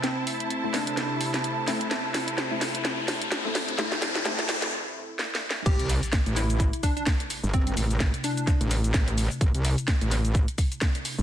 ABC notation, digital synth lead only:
X:1
M:4/4
L:1/16
Q:"Swing 16ths" 1/4=128
K:Am
V:1 name="Digital synth lead"
C2 z4 D4 z6 | z16 | z16 | G2 z4 E4 D D z4 |
C2 z4 D4 z6 | z16 |]